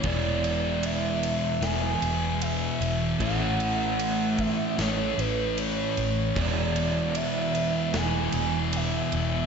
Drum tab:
RD |xxxxxxxx|xxxxxxxx|xxxxxxxx|
SD |----o---|----o---|----o---|
BD |o-------|o--o----|o-------|